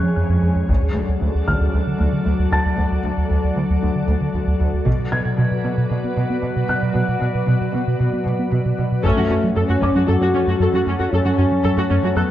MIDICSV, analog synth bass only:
0, 0, Header, 1, 2, 480
1, 0, Start_track
1, 0, Key_signature, 3, "minor"
1, 0, Tempo, 521739
1, 635, Time_signature, 4, 2, 24, 8
1, 11323, End_track
2, 0, Start_track
2, 0, Title_t, "Analog synth bass"
2, 0, Program_c, 0, 38
2, 31, Note_on_c, 0, 53, 58
2, 104, Note_off_c, 0, 53, 0
2, 153, Note_on_c, 0, 41, 53
2, 226, Note_off_c, 0, 41, 0
2, 268, Note_on_c, 0, 41, 73
2, 342, Note_off_c, 0, 41, 0
2, 393, Note_on_c, 0, 41, 47
2, 466, Note_off_c, 0, 41, 0
2, 512, Note_on_c, 0, 41, 48
2, 585, Note_off_c, 0, 41, 0
2, 637, Note_on_c, 0, 38, 73
2, 708, Note_off_c, 0, 38, 0
2, 759, Note_on_c, 0, 38, 53
2, 830, Note_off_c, 0, 38, 0
2, 876, Note_on_c, 0, 38, 48
2, 948, Note_off_c, 0, 38, 0
2, 1000, Note_on_c, 0, 38, 52
2, 1070, Note_off_c, 0, 38, 0
2, 1119, Note_on_c, 0, 38, 68
2, 1190, Note_off_c, 0, 38, 0
2, 1240, Note_on_c, 0, 38, 52
2, 1311, Note_off_c, 0, 38, 0
2, 1361, Note_on_c, 0, 50, 55
2, 1431, Note_off_c, 0, 50, 0
2, 1481, Note_on_c, 0, 38, 66
2, 1551, Note_off_c, 0, 38, 0
2, 1605, Note_on_c, 0, 38, 50
2, 1674, Note_off_c, 0, 38, 0
2, 1722, Note_on_c, 0, 50, 51
2, 1792, Note_off_c, 0, 50, 0
2, 1841, Note_on_c, 0, 38, 73
2, 1911, Note_off_c, 0, 38, 0
2, 1956, Note_on_c, 0, 50, 58
2, 2028, Note_off_c, 0, 50, 0
2, 2079, Note_on_c, 0, 38, 54
2, 2150, Note_off_c, 0, 38, 0
2, 2197, Note_on_c, 0, 38, 74
2, 2269, Note_off_c, 0, 38, 0
2, 2316, Note_on_c, 0, 38, 52
2, 2388, Note_off_c, 0, 38, 0
2, 2440, Note_on_c, 0, 38, 49
2, 2510, Note_off_c, 0, 38, 0
2, 2562, Note_on_c, 0, 38, 75
2, 2632, Note_off_c, 0, 38, 0
2, 2684, Note_on_c, 0, 38, 52
2, 2753, Note_off_c, 0, 38, 0
2, 2800, Note_on_c, 0, 38, 51
2, 2870, Note_off_c, 0, 38, 0
2, 2921, Note_on_c, 0, 38, 53
2, 2991, Note_off_c, 0, 38, 0
2, 3041, Note_on_c, 0, 38, 77
2, 3111, Note_off_c, 0, 38, 0
2, 3163, Note_on_c, 0, 38, 50
2, 3233, Note_off_c, 0, 38, 0
2, 3280, Note_on_c, 0, 50, 50
2, 3350, Note_off_c, 0, 50, 0
2, 3404, Note_on_c, 0, 38, 71
2, 3473, Note_off_c, 0, 38, 0
2, 3523, Note_on_c, 0, 38, 50
2, 3593, Note_off_c, 0, 38, 0
2, 3639, Note_on_c, 0, 50, 48
2, 3710, Note_off_c, 0, 50, 0
2, 3755, Note_on_c, 0, 38, 76
2, 3827, Note_off_c, 0, 38, 0
2, 3876, Note_on_c, 0, 50, 54
2, 3947, Note_off_c, 0, 50, 0
2, 3993, Note_on_c, 0, 38, 52
2, 4065, Note_off_c, 0, 38, 0
2, 4115, Note_on_c, 0, 38, 72
2, 4187, Note_off_c, 0, 38, 0
2, 4236, Note_on_c, 0, 38, 50
2, 4308, Note_off_c, 0, 38, 0
2, 4354, Note_on_c, 0, 38, 49
2, 4426, Note_off_c, 0, 38, 0
2, 4477, Note_on_c, 0, 47, 70
2, 4548, Note_off_c, 0, 47, 0
2, 4598, Note_on_c, 0, 47, 51
2, 4669, Note_off_c, 0, 47, 0
2, 4717, Note_on_c, 0, 47, 50
2, 4789, Note_off_c, 0, 47, 0
2, 4836, Note_on_c, 0, 47, 51
2, 4908, Note_off_c, 0, 47, 0
2, 4955, Note_on_c, 0, 47, 73
2, 5027, Note_off_c, 0, 47, 0
2, 5075, Note_on_c, 0, 47, 47
2, 5147, Note_off_c, 0, 47, 0
2, 5195, Note_on_c, 0, 59, 51
2, 5267, Note_off_c, 0, 59, 0
2, 5315, Note_on_c, 0, 47, 70
2, 5387, Note_off_c, 0, 47, 0
2, 5437, Note_on_c, 0, 47, 45
2, 5509, Note_off_c, 0, 47, 0
2, 5558, Note_on_c, 0, 59, 46
2, 5629, Note_off_c, 0, 59, 0
2, 5677, Note_on_c, 0, 47, 71
2, 5748, Note_off_c, 0, 47, 0
2, 5797, Note_on_c, 0, 59, 57
2, 5869, Note_off_c, 0, 59, 0
2, 5917, Note_on_c, 0, 47, 52
2, 5988, Note_off_c, 0, 47, 0
2, 6039, Note_on_c, 0, 47, 66
2, 6110, Note_off_c, 0, 47, 0
2, 6158, Note_on_c, 0, 47, 50
2, 6229, Note_off_c, 0, 47, 0
2, 6280, Note_on_c, 0, 47, 49
2, 6350, Note_off_c, 0, 47, 0
2, 6397, Note_on_c, 0, 47, 72
2, 6468, Note_off_c, 0, 47, 0
2, 6520, Note_on_c, 0, 47, 48
2, 6590, Note_off_c, 0, 47, 0
2, 6639, Note_on_c, 0, 47, 50
2, 6709, Note_off_c, 0, 47, 0
2, 6761, Note_on_c, 0, 47, 48
2, 6831, Note_off_c, 0, 47, 0
2, 6879, Note_on_c, 0, 47, 73
2, 6950, Note_off_c, 0, 47, 0
2, 7001, Note_on_c, 0, 47, 47
2, 7071, Note_off_c, 0, 47, 0
2, 7124, Note_on_c, 0, 59, 51
2, 7193, Note_off_c, 0, 59, 0
2, 7243, Note_on_c, 0, 47, 68
2, 7313, Note_off_c, 0, 47, 0
2, 7362, Note_on_c, 0, 47, 48
2, 7432, Note_off_c, 0, 47, 0
2, 7480, Note_on_c, 0, 59, 48
2, 7550, Note_off_c, 0, 59, 0
2, 7600, Note_on_c, 0, 47, 70
2, 7671, Note_off_c, 0, 47, 0
2, 7718, Note_on_c, 0, 59, 54
2, 7789, Note_off_c, 0, 59, 0
2, 7839, Note_on_c, 0, 47, 52
2, 7910, Note_off_c, 0, 47, 0
2, 7963, Note_on_c, 0, 47, 69
2, 8032, Note_off_c, 0, 47, 0
2, 8084, Note_on_c, 0, 47, 49
2, 8153, Note_off_c, 0, 47, 0
2, 8206, Note_on_c, 0, 47, 47
2, 8274, Note_off_c, 0, 47, 0
2, 8323, Note_on_c, 0, 42, 73
2, 8392, Note_off_c, 0, 42, 0
2, 8447, Note_on_c, 0, 54, 52
2, 8515, Note_off_c, 0, 54, 0
2, 8560, Note_on_c, 0, 42, 47
2, 8631, Note_off_c, 0, 42, 0
2, 8684, Note_on_c, 0, 54, 54
2, 8753, Note_off_c, 0, 54, 0
2, 8800, Note_on_c, 0, 42, 70
2, 8870, Note_off_c, 0, 42, 0
2, 8920, Note_on_c, 0, 42, 46
2, 8991, Note_off_c, 0, 42, 0
2, 9039, Note_on_c, 0, 42, 52
2, 9110, Note_off_c, 0, 42, 0
2, 9160, Note_on_c, 0, 54, 51
2, 9230, Note_off_c, 0, 54, 0
2, 9279, Note_on_c, 0, 42, 67
2, 9350, Note_off_c, 0, 42, 0
2, 9399, Note_on_c, 0, 54, 49
2, 9469, Note_off_c, 0, 54, 0
2, 9517, Note_on_c, 0, 54, 48
2, 9589, Note_off_c, 0, 54, 0
2, 9635, Note_on_c, 0, 42, 58
2, 9707, Note_off_c, 0, 42, 0
2, 9752, Note_on_c, 0, 42, 73
2, 9825, Note_off_c, 0, 42, 0
2, 9876, Note_on_c, 0, 54, 49
2, 9948, Note_off_c, 0, 54, 0
2, 9996, Note_on_c, 0, 42, 50
2, 10067, Note_off_c, 0, 42, 0
2, 10119, Note_on_c, 0, 42, 48
2, 10190, Note_off_c, 0, 42, 0
2, 10237, Note_on_c, 0, 42, 69
2, 10308, Note_off_c, 0, 42, 0
2, 10353, Note_on_c, 0, 54, 55
2, 10426, Note_off_c, 0, 54, 0
2, 10473, Note_on_c, 0, 42, 49
2, 10546, Note_off_c, 0, 42, 0
2, 10595, Note_on_c, 0, 54, 49
2, 10667, Note_off_c, 0, 54, 0
2, 10715, Note_on_c, 0, 42, 73
2, 10787, Note_off_c, 0, 42, 0
2, 10831, Note_on_c, 0, 42, 51
2, 10904, Note_off_c, 0, 42, 0
2, 10953, Note_on_c, 0, 42, 56
2, 11026, Note_off_c, 0, 42, 0
2, 11072, Note_on_c, 0, 54, 50
2, 11145, Note_off_c, 0, 54, 0
2, 11190, Note_on_c, 0, 42, 68
2, 11264, Note_off_c, 0, 42, 0
2, 11323, End_track
0, 0, End_of_file